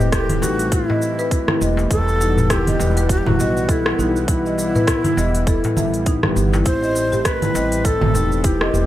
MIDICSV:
0, 0, Header, 1, 8, 480
1, 0, Start_track
1, 0, Key_signature, 1, "minor"
1, 0, Tempo, 594059
1, 1542, Time_signature, 4, 2, 24, 8
1, 7161, End_track
2, 0, Start_track
2, 0, Title_t, "Marimba"
2, 0, Program_c, 0, 12
2, 0, Note_on_c, 0, 75, 73
2, 92, Note_off_c, 0, 75, 0
2, 107, Note_on_c, 0, 69, 97
2, 334, Note_off_c, 0, 69, 0
2, 346, Note_on_c, 0, 63, 76
2, 475, Note_off_c, 0, 63, 0
2, 585, Note_on_c, 0, 64, 98
2, 662, Note_off_c, 0, 64, 0
2, 723, Note_on_c, 0, 75, 83
2, 819, Note_off_c, 0, 75, 0
2, 961, Note_on_c, 0, 71, 103
2, 1187, Note_off_c, 0, 71, 0
2, 1201, Note_on_c, 0, 64, 80
2, 1298, Note_off_c, 0, 64, 0
2, 1308, Note_on_c, 0, 75, 68
2, 1535, Note_off_c, 0, 75, 0
2, 1546, Note_on_c, 0, 69, 99
2, 1774, Note_off_c, 0, 69, 0
2, 1785, Note_on_c, 0, 63, 76
2, 1914, Note_off_c, 0, 63, 0
2, 2024, Note_on_c, 0, 64, 95
2, 2101, Note_off_c, 0, 64, 0
2, 2164, Note_on_c, 0, 75, 78
2, 2259, Note_off_c, 0, 75, 0
2, 2404, Note_on_c, 0, 71, 108
2, 2628, Note_off_c, 0, 71, 0
2, 2642, Note_on_c, 0, 64, 82
2, 2738, Note_off_c, 0, 64, 0
2, 2748, Note_on_c, 0, 75, 74
2, 2975, Note_off_c, 0, 75, 0
2, 2986, Note_on_c, 0, 69, 97
2, 3214, Note_off_c, 0, 69, 0
2, 3227, Note_on_c, 0, 63, 74
2, 3355, Note_off_c, 0, 63, 0
2, 3466, Note_on_c, 0, 64, 96
2, 3542, Note_off_c, 0, 64, 0
2, 3606, Note_on_c, 0, 75, 80
2, 3700, Note_off_c, 0, 75, 0
2, 3842, Note_on_c, 0, 71, 103
2, 4067, Note_off_c, 0, 71, 0
2, 4083, Note_on_c, 0, 64, 80
2, 4179, Note_off_c, 0, 64, 0
2, 4187, Note_on_c, 0, 75, 76
2, 4414, Note_off_c, 0, 75, 0
2, 4425, Note_on_c, 0, 69, 98
2, 4547, Note_off_c, 0, 69, 0
2, 4665, Note_on_c, 0, 76, 71
2, 4794, Note_off_c, 0, 76, 0
2, 4903, Note_on_c, 0, 63, 95
2, 5033, Note_off_c, 0, 63, 0
2, 5041, Note_on_c, 0, 67, 72
2, 5132, Note_off_c, 0, 67, 0
2, 5141, Note_on_c, 0, 67, 72
2, 5265, Note_off_c, 0, 67, 0
2, 5278, Note_on_c, 0, 64, 80
2, 5337, Note_off_c, 0, 64, 0
2, 5381, Note_on_c, 0, 64, 90
2, 5460, Note_off_c, 0, 64, 0
2, 5516, Note_on_c, 0, 75, 80
2, 5615, Note_off_c, 0, 75, 0
2, 5755, Note_on_c, 0, 67, 107
2, 5983, Note_off_c, 0, 67, 0
2, 5996, Note_on_c, 0, 64, 71
2, 6095, Note_off_c, 0, 64, 0
2, 6099, Note_on_c, 0, 75, 74
2, 6330, Note_off_c, 0, 75, 0
2, 6339, Note_on_c, 0, 69, 105
2, 6570, Note_off_c, 0, 69, 0
2, 6582, Note_on_c, 0, 63, 74
2, 6712, Note_off_c, 0, 63, 0
2, 6820, Note_on_c, 0, 64, 98
2, 6899, Note_off_c, 0, 64, 0
2, 6957, Note_on_c, 0, 75, 78
2, 7056, Note_off_c, 0, 75, 0
2, 7161, End_track
3, 0, Start_track
3, 0, Title_t, "Bansuri"
3, 0, Program_c, 1, 73
3, 0, Note_on_c, 1, 67, 118
3, 100, Note_off_c, 1, 67, 0
3, 105, Note_on_c, 1, 67, 108
3, 346, Note_on_c, 1, 66, 98
3, 358, Note_off_c, 1, 67, 0
3, 586, Note_on_c, 1, 64, 90
3, 598, Note_off_c, 1, 66, 0
3, 1304, Note_off_c, 1, 64, 0
3, 1542, Note_on_c, 1, 69, 126
3, 2026, Note_on_c, 1, 67, 104
3, 2039, Note_off_c, 1, 69, 0
3, 2504, Note_off_c, 1, 67, 0
3, 2510, Note_on_c, 1, 66, 99
3, 2569, Note_on_c, 1, 67, 84
3, 2581, Note_off_c, 1, 66, 0
3, 2643, Note_on_c, 1, 66, 101
3, 2655, Note_off_c, 1, 67, 0
3, 2995, Note_on_c, 1, 64, 89
3, 3007, Note_off_c, 1, 66, 0
3, 3465, Note_off_c, 1, 64, 0
3, 3470, Note_on_c, 1, 64, 102
3, 5113, Note_off_c, 1, 64, 0
3, 5374, Note_on_c, 1, 72, 121
3, 5860, Note_on_c, 1, 71, 108
3, 5872, Note_off_c, 1, 72, 0
3, 6346, Note_on_c, 1, 69, 106
3, 6358, Note_off_c, 1, 71, 0
3, 6823, Note_on_c, 1, 67, 88
3, 6835, Note_off_c, 1, 69, 0
3, 7161, Note_off_c, 1, 67, 0
3, 7161, End_track
4, 0, Start_track
4, 0, Title_t, "Tine electric piano"
4, 0, Program_c, 2, 4
4, 0, Control_c, 2, 64, 127
4, 0, Note_on_c, 2, 52, 89
4, 0, Note_on_c, 2, 55, 88
4, 0, Note_on_c, 2, 57, 83
4, 0, Note_on_c, 2, 60, 82
4, 0, Note_on_c, 2, 64, 80
4, 0, Note_on_c, 2, 67, 76
4, 0, Note_on_c, 2, 71, 96
4, 308, Note_off_c, 2, 57, 0
4, 312, Note_off_c, 2, 60, 0
4, 316, Note_off_c, 2, 64, 0
4, 321, Note_off_c, 2, 67, 0
4, 324, Note_off_c, 2, 71, 0
4, 327, Note_on_c, 2, 57, 82
4, 335, Note_on_c, 2, 60, 76
4, 344, Note_off_c, 2, 52, 0
4, 344, Note_on_c, 2, 52, 74
4, 350, Note_on_c, 2, 67, 76
4, 359, Note_on_c, 2, 71, 94
4, 1164, Note_off_c, 2, 57, 0
4, 1168, Note_off_c, 2, 60, 0
4, 1173, Note_off_c, 2, 52, 0
4, 1176, Note_off_c, 2, 67, 0
4, 1180, Note_off_c, 2, 71, 0
4, 1190, Note_on_c, 2, 57, 86
4, 1195, Note_on_c, 2, 60, 80
4, 1198, Note_on_c, 2, 64, 84
4, 1203, Note_on_c, 2, 67, 87
4, 1208, Note_on_c, 2, 71, 103
4, 1512, Note_off_c, 2, 57, 0
4, 1515, Note_off_c, 2, 60, 0
4, 1516, Note_off_c, 2, 64, 0
4, 1519, Note_off_c, 2, 67, 0
4, 1521, Note_off_c, 2, 71, 0
4, 1524, Note_off_c, 2, 55, 0
4, 1524, Note_on_c, 2, 55, 80
4, 1533, Note_on_c, 2, 59, 73
4, 1541, Note_on_c, 2, 52, 70
4, 1548, Note_on_c, 2, 67, 69
4, 1551, Control_c, 2, 64, 0
4, 1554, Note_on_c, 2, 71, 84
4, 1675, Control_c, 2, 64, 127
4, 2228, Note_off_c, 2, 55, 0
4, 2233, Note_off_c, 2, 59, 0
4, 2237, Note_off_c, 2, 52, 0
4, 2240, Note_off_c, 2, 67, 0
4, 2242, Note_on_c, 2, 55, 98
4, 2243, Note_off_c, 2, 71, 0
4, 2251, Note_on_c, 2, 59, 90
4, 2258, Note_on_c, 2, 52, 89
4, 2265, Note_on_c, 2, 64, 96
4, 2275, Note_on_c, 2, 71, 111
4, 3187, Note_off_c, 2, 55, 0
4, 3192, Note_off_c, 2, 59, 0
4, 3195, Note_off_c, 2, 52, 0
4, 3199, Note_off_c, 2, 64, 0
4, 3204, Note_off_c, 2, 71, 0
4, 3211, Note_on_c, 2, 55, 86
4, 3218, Note_on_c, 2, 59, 76
4, 3219, Note_on_c, 2, 64, 71
4, 3223, Note_on_c, 2, 67, 76
4, 3227, Note_on_c, 2, 71, 92
4, 3432, Note_off_c, 2, 55, 0
4, 3435, Note_off_c, 2, 59, 0
4, 3436, Note_off_c, 2, 64, 0
4, 3438, Note_off_c, 2, 67, 0
4, 3440, Note_off_c, 2, 71, 0
4, 3445, Note_on_c, 2, 55, 85
4, 3453, Note_on_c, 2, 59, 74
4, 3462, Note_on_c, 2, 52, 81
4, 3470, Note_on_c, 2, 67, 77
4, 3478, Note_on_c, 2, 71, 98
4, 4149, Note_off_c, 2, 55, 0
4, 4153, Note_off_c, 2, 59, 0
4, 4157, Note_off_c, 2, 52, 0
4, 4161, Note_off_c, 2, 67, 0
4, 4164, Note_on_c, 2, 55, 79
4, 4165, Note_off_c, 2, 71, 0
4, 4175, Note_on_c, 2, 59, 75
4, 4182, Note_on_c, 2, 64, 74
4, 4190, Note_on_c, 2, 67, 75
4, 4197, Note_on_c, 2, 71, 90
4, 5003, Note_off_c, 2, 55, 0
4, 5008, Note_off_c, 2, 59, 0
4, 5012, Note_off_c, 2, 64, 0
4, 5016, Note_off_c, 2, 67, 0
4, 5019, Note_off_c, 2, 71, 0
4, 5031, Note_on_c, 2, 55, 101
4, 5036, Note_on_c, 2, 59, 86
4, 5038, Note_on_c, 2, 52, 88
4, 5044, Note_on_c, 2, 67, 91
4, 5045, Note_on_c, 2, 71, 107
4, 5353, Note_off_c, 2, 55, 0
4, 5355, Note_off_c, 2, 59, 0
4, 5356, Note_off_c, 2, 52, 0
4, 5359, Note_off_c, 2, 67, 0
4, 5360, Note_off_c, 2, 71, 0
4, 5364, Note_on_c, 2, 57, 80
4, 5373, Note_on_c, 2, 60, 71
4, 5381, Note_on_c, 2, 64, 69
4, 5388, Note_on_c, 2, 67, 70
4, 5393, Control_c, 2, 64, 0
4, 5543, Control_c, 2, 64, 127
4, 6068, Note_off_c, 2, 57, 0
4, 6073, Note_off_c, 2, 60, 0
4, 6077, Note_off_c, 2, 64, 0
4, 6080, Note_off_c, 2, 67, 0
4, 6085, Note_on_c, 2, 57, 95
4, 6090, Note_on_c, 2, 60, 96
4, 6101, Note_on_c, 2, 52, 96
4, 6109, Note_on_c, 2, 67, 92
4, 6116, Note_on_c, 2, 71, 110
4, 7029, Note_off_c, 2, 57, 0
4, 7031, Note_off_c, 2, 60, 0
4, 7037, Note_off_c, 2, 52, 0
4, 7041, Note_off_c, 2, 67, 0
4, 7044, Note_off_c, 2, 71, 0
4, 7054, Note_on_c, 2, 57, 84
4, 7059, Note_on_c, 2, 60, 73
4, 7063, Note_on_c, 2, 64, 74
4, 7066, Note_on_c, 2, 67, 78
4, 7070, Note_on_c, 2, 71, 91
4, 7161, Note_off_c, 2, 57, 0
4, 7161, Note_off_c, 2, 60, 0
4, 7161, Note_off_c, 2, 64, 0
4, 7161, Note_off_c, 2, 67, 0
4, 7161, Note_off_c, 2, 71, 0
4, 7161, End_track
5, 0, Start_track
5, 0, Title_t, "Analog synth pad"
5, 0, Program_c, 3, 89
5, 0, Note_on_c, 3, 55, 85
5, 0, Note_on_c, 3, 57, 78
5, 0, Note_on_c, 3, 60, 75
5, 1509, Note_off_c, 3, 60, 0
5, 1510, Note_off_c, 3, 57, 0
5, 1540, Note_on_c, 3, 52, 78
5, 1540, Note_on_c, 3, 78, 69
5, 1541, Note_on_c, 3, 59, 67
5, 5348, Note_off_c, 3, 52, 0
5, 5349, Note_off_c, 3, 59, 0
5, 5349, Note_off_c, 3, 78, 0
5, 5380, Note_on_c, 3, 57, 73
5, 5380, Note_on_c, 3, 60, 74
5, 7161, Note_off_c, 3, 55, 0
5, 7161, Note_off_c, 3, 57, 0
5, 7161, Note_off_c, 3, 60, 0
5, 7161, End_track
6, 0, Start_track
6, 0, Title_t, "Upright bass"
6, 0, Program_c, 4, 32
6, 0, Note_on_c, 4, 28, 81
6, 310, Note_off_c, 4, 28, 0
6, 343, Note_on_c, 4, 33, 87
6, 678, Note_off_c, 4, 33, 0
6, 1304, Note_on_c, 4, 28, 97
6, 1504, Note_off_c, 4, 28, 0
6, 1541, Note_on_c, 4, 28, 92
6, 2231, Note_off_c, 4, 28, 0
6, 2264, Note_on_c, 4, 28, 94
6, 2599, Note_off_c, 4, 28, 0
6, 2640, Note_on_c, 4, 28, 101
6, 2723, Note_off_c, 4, 28, 0
6, 2744, Note_on_c, 4, 35, 87
6, 3192, Note_off_c, 4, 35, 0
6, 3218, Note_on_c, 4, 35, 81
6, 4149, Note_off_c, 4, 35, 0
6, 4178, Note_on_c, 4, 28, 85
6, 4516, Note_off_c, 4, 28, 0
6, 4660, Note_on_c, 4, 33, 82
6, 5110, Note_off_c, 4, 33, 0
6, 5139, Note_on_c, 4, 31, 91
6, 5342, Note_off_c, 4, 31, 0
6, 6099, Note_on_c, 4, 33, 91
6, 6436, Note_off_c, 4, 33, 0
6, 6478, Note_on_c, 4, 33, 96
6, 6562, Note_off_c, 4, 33, 0
6, 6580, Note_on_c, 4, 28, 84
6, 7030, Note_off_c, 4, 28, 0
6, 7059, Note_on_c, 4, 28, 91
6, 7161, Note_off_c, 4, 28, 0
6, 7161, End_track
7, 0, Start_track
7, 0, Title_t, "Darbuka"
7, 242, Note_on_c, 9, 63, 39
7, 322, Note_off_c, 9, 63, 0
7, 340, Note_on_c, 9, 63, 82
7, 421, Note_off_c, 9, 63, 0
7, 725, Note_on_c, 9, 63, 79
7, 727, Note_on_c, 9, 64, 83
7, 806, Note_off_c, 9, 63, 0
7, 808, Note_off_c, 9, 64, 0
7, 1432, Note_on_c, 9, 63, 82
7, 1437, Note_on_c, 9, 62, 36
7, 1513, Note_off_c, 9, 63, 0
7, 1518, Note_off_c, 9, 62, 0
7, 1682, Note_on_c, 9, 63, 37
7, 1763, Note_off_c, 9, 63, 0
7, 1782, Note_on_c, 9, 62, 63
7, 1863, Note_off_c, 9, 62, 0
7, 1920, Note_on_c, 9, 64, 89
7, 2001, Note_off_c, 9, 64, 0
7, 2158, Note_on_c, 9, 63, 39
7, 2239, Note_off_c, 9, 63, 0
7, 2259, Note_on_c, 9, 63, 77
7, 2339, Note_off_c, 9, 63, 0
7, 2634, Note_on_c, 9, 64, 88
7, 2715, Note_off_c, 9, 64, 0
7, 2747, Note_on_c, 9, 63, 65
7, 2828, Note_off_c, 9, 63, 0
7, 3122, Note_on_c, 9, 63, 85
7, 3203, Note_off_c, 9, 63, 0
7, 3701, Note_on_c, 9, 62, 61
7, 3782, Note_off_c, 9, 62, 0
7, 3842, Note_on_c, 9, 64, 87
7, 3923, Note_off_c, 9, 64, 0
7, 4082, Note_on_c, 9, 63, 38
7, 4162, Note_off_c, 9, 63, 0
7, 4180, Note_on_c, 9, 63, 78
7, 4261, Note_off_c, 9, 63, 0
7, 4562, Note_on_c, 9, 62, 34
7, 4562, Note_on_c, 9, 64, 76
7, 4563, Note_on_c, 9, 63, 76
7, 4643, Note_off_c, 9, 62, 0
7, 4643, Note_off_c, 9, 63, 0
7, 4643, Note_off_c, 9, 64, 0
7, 5280, Note_on_c, 9, 62, 33
7, 5280, Note_on_c, 9, 63, 87
7, 5361, Note_off_c, 9, 62, 0
7, 5361, Note_off_c, 9, 63, 0
7, 5513, Note_on_c, 9, 63, 35
7, 5594, Note_off_c, 9, 63, 0
7, 5616, Note_on_c, 9, 62, 63
7, 5697, Note_off_c, 9, 62, 0
7, 5762, Note_on_c, 9, 64, 79
7, 5843, Note_off_c, 9, 64, 0
7, 5998, Note_on_c, 9, 63, 34
7, 6079, Note_off_c, 9, 63, 0
7, 6100, Note_on_c, 9, 63, 78
7, 6181, Note_off_c, 9, 63, 0
7, 6482, Note_on_c, 9, 64, 80
7, 6562, Note_off_c, 9, 64, 0
7, 6582, Note_on_c, 9, 63, 65
7, 6663, Note_off_c, 9, 63, 0
7, 6958, Note_on_c, 9, 63, 78
7, 7039, Note_off_c, 9, 63, 0
7, 7161, End_track
8, 0, Start_track
8, 0, Title_t, "Drums"
8, 4, Note_on_c, 9, 82, 33
8, 85, Note_off_c, 9, 82, 0
8, 101, Note_on_c, 9, 36, 103
8, 101, Note_on_c, 9, 37, 84
8, 101, Note_on_c, 9, 46, 64
8, 105, Note_on_c, 9, 82, 45
8, 181, Note_off_c, 9, 37, 0
8, 181, Note_off_c, 9, 46, 0
8, 182, Note_off_c, 9, 36, 0
8, 186, Note_off_c, 9, 82, 0
8, 238, Note_on_c, 9, 46, 47
8, 238, Note_on_c, 9, 64, 59
8, 243, Note_on_c, 9, 82, 32
8, 319, Note_off_c, 9, 46, 0
8, 319, Note_off_c, 9, 64, 0
8, 324, Note_off_c, 9, 82, 0
8, 346, Note_on_c, 9, 82, 87
8, 427, Note_off_c, 9, 82, 0
8, 479, Note_on_c, 9, 46, 46
8, 484, Note_on_c, 9, 82, 38
8, 560, Note_off_c, 9, 46, 0
8, 565, Note_off_c, 9, 82, 0
8, 580, Note_on_c, 9, 46, 72
8, 581, Note_on_c, 9, 36, 105
8, 585, Note_on_c, 9, 82, 51
8, 661, Note_off_c, 9, 46, 0
8, 662, Note_off_c, 9, 36, 0
8, 665, Note_off_c, 9, 82, 0
8, 823, Note_on_c, 9, 82, 82
8, 904, Note_off_c, 9, 82, 0
8, 963, Note_on_c, 9, 82, 35
8, 1044, Note_off_c, 9, 82, 0
8, 1061, Note_on_c, 9, 36, 101
8, 1062, Note_on_c, 9, 46, 63
8, 1066, Note_on_c, 9, 82, 44
8, 1141, Note_off_c, 9, 36, 0
8, 1143, Note_off_c, 9, 46, 0
8, 1147, Note_off_c, 9, 82, 0
8, 1197, Note_on_c, 9, 37, 77
8, 1197, Note_on_c, 9, 64, 71
8, 1278, Note_off_c, 9, 37, 0
8, 1278, Note_off_c, 9, 64, 0
8, 1305, Note_on_c, 9, 82, 82
8, 1386, Note_off_c, 9, 82, 0
8, 1443, Note_on_c, 9, 82, 34
8, 1523, Note_off_c, 9, 82, 0
8, 1540, Note_on_c, 9, 36, 107
8, 1540, Note_on_c, 9, 46, 62
8, 1544, Note_on_c, 9, 82, 48
8, 1621, Note_off_c, 9, 36, 0
8, 1621, Note_off_c, 9, 46, 0
8, 1625, Note_off_c, 9, 82, 0
8, 1684, Note_on_c, 9, 82, 31
8, 1764, Note_off_c, 9, 82, 0
8, 1786, Note_on_c, 9, 82, 81
8, 1867, Note_off_c, 9, 82, 0
8, 1924, Note_on_c, 9, 82, 34
8, 2004, Note_off_c, 9, 82, 0
8, 2020, Note_on_c, 9, 36, 102
8, 2021, Note_on_c, 9, 37, 84
8, 2021, Note_on_c, 9, 46, 70
8, 2025, Note_on_c, 9, 82, 46
8, 2101, Note_off_c, 9, 36, 0
8, 2101, Note_off_c, 9, 37, 0
8, 2101, Note_off_c, 9, 46, 0
8, 2106, Note_off_c, 9, 82, 0
8, 2160, Note_on_c, 9, 46, 46
8, 2160, Note_on_c, 9, 64, 59
8, 2165, Note_on_c, 9, 82, 32
8, 2241, Note_off_c, 9, 46, 0
8, 2241, Note_off_c, 9, 64, 0
8, 2245, Note_off_c, 9, 82, 0
8, 2265, Note_on_c, 9, 82, 82
8, 2346, Note_off_c, 9, 82, 0
8, 2398, Note_on_c, 9, 46, 44
8, 2403, Note_on_c, 9, 82, 39
8, 2479, Note_off_c, 9, 46, 0
8, 2484, Note_off_c, 9, 82, 0
8, 2500, Note_on_c, 9, 36, 112
8, 2502, Note_on_c, 9, 46, 69
8, 2506, Note_on_c, 9, 82, 51
8, 2581, Note_off_c, 9, 36, 0
8, 2583, Note_off_c, 9, 46, 0
8, 2587, Note_off_c, 9, 82, 0
8, 2638, Note_on_c, 9, 64, 77
8, 2719, Note_off_c, 9, 64, 0
8, 2746, Note_on_c, 9, 82, 79
8, 2827, Note_off_c, 9, 82, 0
8, 2885, Note_on_c, 9, 82, 34
8, 2966, Note_off_c, 9, 82, 0
8, 2979, Note_on_c, 9, 36, 108
8, 2982, Note_on_c, 9, 46, 59
8, 2987, Note_on_c, 9, 82, 43
8, 3060, Note_off_c, 9, 36, 0
8, 3063, Note_off_c, 9, 46, 0
8, 3067, Note_off_c, 9, 82, 0
8, 3118, Note_on_c, 9, 37, 86
8, 3199, Note_off_c, 9, 37, 0
8, 3227, Note_on_c, 9, 82, 78
8, 3308, Note_off_c, 9, 82, 0
8, 3363, Note_on_c, 9, 82, 35
8, 3443, Note_off_c, 9, 82, 0
8, 3458, Note_on_c, 9, 36, 111
8, 3458, Note_on_c, 9, 46, 66
8, 3463, Note_on_c, 9, 82, 47
8, 3539, Note_off_c, 9, 36, 0
8, 3539, Note_off_c, 9, 46, 0
8, 3544, Note_off_c, 9, 82, 0
8, 3603, Note_on_c, 9, 82, 32
8, 3684, Note_off_c, 9, 82, 0
8, 3705, Note_on_c, 9, 82, 81
8, 3786, Note_off_c, 9, 82, 0
8, 3843, Note_on_c, 9, 82, 33
8, 3924, Note_off_c, 9, 82, 0
8, 3938, Note_on_c, 9, 36, 100
8, 3941, Note_on_c, 9, 37, 79
8, 3941, Note_on_c, 9, 46, 61
8, 3945, Note_on_c, 9, 82, 47
8, 4019, Note_off_c, 9, 36, 0
8, 4021, Note_off_c, 9, 37, 0
8, 4021, Note_off_c, 9, 46, 0
8, 4026, Note_off_c, 9, 82, 0
8, 4076, Note_on_c, 9, 46, 45
8, 4076, Note_on_c, 9, 64, 62
8, 4081, Note_on_c, 9, 82, 33
8, 4157, Note_off_c, 9, 46, 0
8, 4157, Note_off_c, 9, 64, 0
8, 4162, Note_off_c, 9, 82, 0
8, 4186, Note_on_c, 9, 82, 82
8, 4267, Note_off_c, 9, 82, 0
8, 4319, Note_on_c, 9, 46, 45
8, 4324, Note_on_c, 9, 82, 35
8, 4400, Note_off_c, 9, 46, 0
8, 4405, Note_off_c, 9, 82, 0
8, 4419, Note_on_c, 9, 36, 116
8, 4420, Note_on_c, 9, 46, 66
8, 4425, Note_on_c, 9, 82, 48
8, 4500, Note_off_c, 9, 36, 0
8, 4501, Note_off_c, 9, 46, 0
8, 4505, Note_off_c, 9, 82, 0
8, 4556, Note_on_c, 9, 46, 29
8, 4637, Note_off_c, 9, 46, 0
8, 4660, Note_on_c, 9, 64, 54
8, 4664, Note_on_c, 9, 82, 77
8, 4741, Note_off_c, 9, 64, 0
8, 4745, Note_off_c, 9, 82, 0
8, 4797, Note_on_c, 9, 46, 29
8, 4801, Note_on_c, 9, 82, 32
8, 4877, Note_off_c, 9, 46, 0
8, 4882, Note_off_c, 9, 82, 0
8, 4897, Note_on_c, 9, 46, 63
8, 4899, Note_on_c, 9, 36, 104
8, 4902, Note_on_c, 9, 82, 43
8, 4978, Note_off_c, 9, 46, 0
8, 4980, Note_off_c, 9, 36, 0
8, 4983, Note_off_c, 9, 82, 0
8, 5035, Note_on_c, 9, 37, 72
8, 5035, Note_on_c, 9, 64, 72
8, 5116, Note_off_c, 9, 37, 0
8, 5116, Note_off_c, 9, 64, 0
8, 5143, Note_on_c, 9, 82, 74
8, 5224, Note_off_c, 9, 82, 0
8, 5281, Note_on_c, 9, 82, 35
8, 5362, Note_off_c, 9, 82, 0
8, 5378, Note_on_c, 9, 46, 68
8, 5380, Note_on_c, 9, 36, 106
8, 5383, Note_on_c, 9, 82, 42
8, 5459, Note_off_c, 9, 46, 0
8, 5461, Note_off_c, 9, 36, 0
8, 5463, Note_off_c, 9, 82, 0
8, 5521, Note_on_c, 9, 82, 29
8, 5602, Note_off_c, 9, 82, 0
8, 5620, Note_on_c, 9, 82, 80
8, 5701, Note_off_c, 9, 82, 0
8, 5757, Note_on_c, 9, 82, 34
8, 5838, Note_off_c, 9, 82, 0
8, 5859, Note_on_c, 9, 37, 75
8, 5859, Note_on_c, 9, 46, 66
8, 5861, Note_on_c, 9, 36, 104
8, 5863, Note_on_c, 9, 82, 44
8, 5939, Note_off_c, 9, 37, 0
8, 5939, Note_off_c, 9, 46, 0
8, 5942, Note_off_c, 9, 36, 0
8, 5944, Note_off_c, 9, 82, 0
8, 5997, Note_on_c, 9, 46, 41
8, 5997, Note_on_c, 9, 64, 63
8, 6002, Note_on_c, 9, 82, 34
8, 6078, Note_off_c, 9, 46, 0
8, 6078, Note_off_c, 9, 64, 0
8, 6082, Note_off_c, 9, 82, 0
8, 6103, Note_on_c, 9, 82, 82
8, 6184, Note_off_c, 9, 82, 0
8, 6238, Note_on_c, 9, 46, 47
8, 6242, Note_on_c, 9, 82, 34
8, 6319, Note_off_c, 9, 46, 0
8, 6323, Note_off_c, 9, 82, 0
8, 6341, Note_on_c, 9, 36, 104
8, 6341, Note_on_c, 9, 46, 70
8, 6346, Note_on_c, 9, 82, 49
8, 6422, Note_off_c, 9, 36, 0
8, 6422, Note_off_c, 9, 46, 0
8, 6427, Note_off_c, 9, 82, 0
8, 6475, Note_on_c, 9, 64, 79
8, 6556, Note_off_c, 9, 64, 0
8, 6584, Note_on_c, 9, 82, 77
8, 6665, Note_off_c, 9, 82, 0
8, 6722, Note_on_c, 9, 82, 32
8, 6803, Note_off_c, 9, 82, 0
8, 6819, Note_on_c, 9, 46, 61
8, 6822, Note_on_c, 9, 36, 106
8, 6823, Note_on_c, 9, 82, 46
8, 6900, Note_off_c, 9, 46, 0
8, 6903, Note_off_c, 9, 36, 0
8, 6904, Note_off_c, 9, 82, 0
8, 6957, Note_on_c, 9, 37, 77
8, 7038, Note_off_c, 9, 37, 0
8, 7064, Note_on_c, 9, 82, 75
8, 7145, Note_off_c, 9, 82, 0
8, 7161, End_track
0, 0, End_of_file